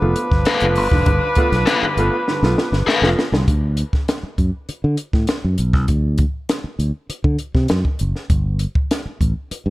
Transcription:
0.00 0.13 F1 medium
0.00 3.13 F3 medium
0.00 0.17 A3 medium
0.00 0.15 B3 medium
0.00 3.13 D4 medium
0.00 0.15 F4 medium
0.00 3.13 B4 loud
0.16 0.23 B3 soft
0.16 0.23 F4 soft
0.16 closed hi-hat medium
0.31 0.43 G1 medium
0.31 kick medium
0.31 snare soft
0.45 0.63 A4 medium
0.45 0.64 B4 medium
0.45 0.64 F5 medium
0.45 snare loud
0.45 closed hi-hat medium
0.60 0.77 F1 medium
0.60 0.78 A3 medium
0.60 0.78 B3 medium
0.60 0.78 F4 medium
0.60 closed hi-hat medium
0.75 0.88 G1 loud
0.75 open hi-hat medium
0.91 1.03 F1 medium
0.91 1.06 G2 soft
0.91 1.06 D3 medium
0.91 kick medium
0.91 snare soft
1.06 1.18 G1 loud
1.06 1.23 G2 medium
1.06 1.23 D3 medium
1.06 kick loud
1.06 closed hi-hat loud
1.35 1.53 A3 medium
1.35 1.52 B3 medium
1.35 1.52 F4 loud
1.35 kick loud
1.35 closed hi-hat medium
1.52 1.63 B1 medium
1.52 1.59 B3 soft
1.52 1.59 F4 soft
1.52 snare soft
1.52 closed hi-hat soft
1.66 1.74 B3 soft
1.66 1.74 F4 soft
1.66 1.83 A4 medium
1.66 1.84 B4 medium
1.66 1.84 F5 medium
1.66 snare loud
1.66 closed hi-hat medium
1.82 1.98 G2 medium
1.82 1.98 D3 medium
1.82 muted fingered electric bass stroke soft
1.97 2.08 G1 medium
1.97 2.13 A3 medium
1.97 2.14 B3 medium
1.97 2.14 F4 medium
1.97 closed hi-hat medium
2.28 2.43 G2 medium
2.28 2.43 D3 medium
2.28 snare medium
2.43 2.54 B1 medium
2.43 2.59 A3 medium
2.43 2.57 B3 medium
2.43 2.57 F4 medium
2.43 snare medium
2.58 2.64 B3 soft
2.58 2.64 F4 soft
2.58 snare medium
2.72 2.84 G1 medium
2.72 snare medium
2.87 3.07 A4 medium
2.87 3.07 B4 medium
2.87 3.08 F5 medium
2.87 muted fingered electric bass stroke soft
2.87 snare medium
3.02 3.13 F1 medium
3.02 3.19 A3 medium
3.02 3.19 B3 medium
3.02 3.19 F4 medium
3.02 snare medium
3.19 snare loud
3.32 3.44 C2 medium
3.32 3.49 G2 medium
3.32 3.49 D3 soft
3.32 snare medium
3.48 3.82 D2 loud
3.48 kick loud
3.48 closed hi-hat medium
3.77 closed hi-hat medium
3.93 kick medium
3.93 snare soft
4.08 snare loud
4.08 closed hi-hat medium
4.23 muted fingered electric bass stroke soft
4.38 4.50 F#2 medium
4.38 kick medium
4.38 closed hi-hat medium
4.69 muted fingered electric bass stroke soft
4.69 closed hi-hat medium
4.84 4.95 D3 medium
4.97 closed hi-hat medium
5.13 5.25 A2 medium
5.13 kick medium
5.13 snare soft
5.27 snare loud
5.27 closed hi-hat medium
5.44 5.56 F#2 medium
5.58 5.73 B1 medium
5.58 closed hi-hat medium
5.73 5.85 C2 medium
5.73 kick medium
5.73 snare soft
5.88 6.23 D2 medium
5.88 kick loud
5.88 closed hi-hat medium
6.18 kick loud
6.18 closed hi-hat medium
6.49 snare loud
6.49 closed hi-hat medium
6.64 muted fingered electric bass stroke soft
6.79 6.90 D2 medium
6.79 closed hi-hat medium
7.09 muted fingered electric bass stroke soft
7.09 closed hi-hat medium
7.24 7.36 D3 medium
7.24 kick medium
7.39 closed hi-hat medium
7.55 7.66 C3 medium
7.55 kick medium
7.55 snare soft
7.68 7.82 F#2 medium
7.68 snare loud
7.68 closed hi-hat medium
7.85 kick medium
7.99 8.12 F#1 medium
7.99 closed hi-hat medium
8.16 snare soft
8.30 8.65 G1 loud
8.30 kick loud
8.30 closed hi-hat medium
8.59 closed hi-hat medium
8.75 kick medium
8.91 snare medium
8.91 closed hi-hat medium
9.06 muted fingered electric bass stroke soft
9.21 9.32 A1 medium
9.21 kick medium
9.21 closed hi-hat medium
9.51 muted fingered electric bass stroke soft
9.51 closed hi-hat medium
9.66 9.70 G2 medium

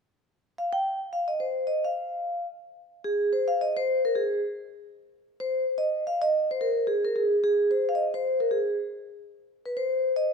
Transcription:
0.58 0.65 F5 medium
0.73 0.98 G5 medium
1.13 1.28 F5 medium
1.28 1.33 D#5 medium
1.40 1.67 C5 medium
1.67 1.81 D#5 medium
1.85 2.45 F5 medium
3.04 3.29 G#4 medium
3.33 3.46 C5 medium
3.48 3.57 F5 medium
3.61 3.68 D#5 medium
3.77 4.00 C5 medium
4.05 4.13 A#4 medium
4.15 4.39 G#4 medium
5.40 5.64 C5 medium
5.78 6.02 D#5 medium
6.07 6.21 F5 medium
6.22 6.48 D#5 medium
6.51 6.55 C5 medium
6.61 6.87 A#4 medium
6.87 7.02 G#4 medium
7.05 7.13 A#4 medium
7.16 7.34 G#4 medium
7.44 7.69 G#4 medium
7.71 7.84 C5 medium
7.89 7.97 F5 medium
7.95 8.02 D#5 medium
8.14 8.37 C5 medium
8.40 8.45 A#4 medium
8.51 8.75 G#4 medium
9.66 9.74 B4 medium
9.77 10.11 C5 medium
10.16 10.34 D#5 medium

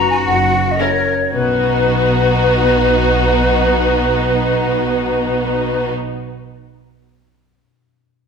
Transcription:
0.00 0.26 F#2 medium
0.00 0.29 B3 soft
0.00 0.29 D#4 soft
0.00 0.80 F#4 medium
0.00 0.29 B4 soft
0.10 0.16 G#5 medium
0.27 0.71 F#1 medium
0.27 1.36 F#2 medium
0.27 0.73 F#5 medium
0.53 1.36 C#4 soft
0.72 0.82 D#5 soft
0.80 0.88 C#4 soft
0.80 0.88 E4 soft
0.80 1.07 A#4 medium
0.80 1.36 A#4 soft
0.80 0.89 A#4 soft
0.80 1.34 C#5 medium
1.07 1.36 C#5 soft
1.33 5.91 B1 medium
1.33 5.91 B2 medium
1.33 5.92 B2 soft
1.33 5.91 B3 soft
1.33 5.91 D#4 soft
1.33 5.92 F#4 medium
1.33 5.91 B4 medium
1.41 5.99 B3 soft
1.48 6.05 D#4 soft
1.55 6.12 F#4 soft
1.62 6.19 B4 soft
1.69 6.27 F#5 soft

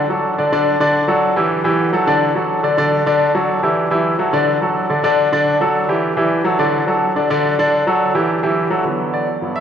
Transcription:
0.09 0.33 F#3 medium
0.09 0.33 F#4 medium
0.09 0.33 A4 medium
0.38 0.50 D3 medium
0.38 0.50 D4 medium
0.38 0.50 D5 medium
0.52 0.75 D3 medium
0.52 0.76 D4 medium
0.52 0.76 D5 loud
0.80 1.04 D3 medium
0.80 1.04 D4 loud
0.80 1.04 D5 loud
1.08 1.31 F#3 medium
1.08 1.32 F#4 medium
1.08 1.32 A4 medium
1.36 1.60 E3 medium
1.36 1.60 E4 medium
1.36 1.60 G4 medium
1.64 1.88 E3 medium
1.64 1.88 E4 medium
1.64 1.88 G4 medium
1.93 2.05 F#3 medium
1.93 2.05 F#4 medium
1.93 2.05 A4 medium
2.07 2.30 D3 medium
2.07 2.30 D4 medium
2.07 2.31 D5 medium
2.35 2.59 F#3 medium
2.35 2.59 F#4 medium
2.35 2.59 A4 medium
2.63 2.75 D3 medium
2.63 2.75 D4 medium
2.63 2.75 D5 medium
2.77 3.01 D3 loud
2.77 3.01 D4 medium
2.77 3.01 D5 loud
3.06 3.29 D3 medium
3.06 3.30 D4 medium
3.06 3.30 D5 loud
3.35 3.58 F#3 medium
3.35 3.58 F#4 medium
3.35 3.58 A4 medium
3.63 3.86 E3 medium
3.63 3.86 E4 medium
3.63 3.86 G4 medium
3.91 4.14 E3 medium
3.91 4.14 E4 medium
3.91 4.14 G4 medium
4.19 4.30 F#3 medium
4.19 4.31 F#4 medium
4.19 4.31 A4 medium
4.33 4.56 D3 loud
4.33 4.56 D4 medium
4.33 4.57 D5 medium
4.61 4.85 F#3 medium
4.61 4.85 F#4 medium
4.61 4.85 A4 medium
4.89 5.01 D3 medium
4.89 5.01 D4 medium
4.89 5.02 D5 medium
5.04 5.27 D3 loud
5.04 5.27 D4 loud
5.04 5.27 D5 loud
5.32 5.55 D3 medium
5.32 5.55 D4 loud
5.32 5.56 D5 loud
5.61 5.84 F#3 medium
5.61 5.84 F#4 medium
5.61 5.84 A4 medium
5.89 6.12 E3 medium
5.89 6.12 E4 medium
5.89 6.12 G4 medium
6.17 6.40 E3 medium
6.17 6.40 E4 medium
6.17 6.40 G4 medium
6.44 6.56 F#3 medium
6.44 6.56 F#4 medium
6.44 6.57 A4 medium
6.59 6.82 D3 medium
6.59 6.82 D4 medium
6.59 6.82 D5 medium
6.87 7.10 F#3 medium
6.87 7.11 F#4 medium
6.87 7.11 A4 medium
7.16 7.27 D3 medium
7.16 7.27 D4 medium
7.16 7.28 D5 medium
7.30 7.53 D3 loud
7.30 7.53 D4 loud
7.30 7.53 D5 loud
7.59 7.81 D3 medium
7.59 7.82 D4 loud
7.59 7.82 D5 medium
7.87 8.10 F#3 medium
7.87 8.10 F#4 medium
7.87 8.10 A4 medium
8.14 8.38 E3 medium
8.14 8.38 E4 medium
8.14 8.38 G4 medium
8.43 8.66 E3 medium
8.43 8.66 E4 medium
8.43 8.66 G4 medium
8.70 8.82 F#3 medium
8.70 8.82 F#4 medium
8.70 8.83 A4 medium
8.84 9.25 D3 medium
8.84 9.25 F#3 medium
8.84 9.26 B3 medium
9.14 9.53 D5 medium
9.41 9.60 G2 medium
9.41 9.60 F#3 medium
9.41 9.60 B3 medium
9.56 9.60 E5 medium

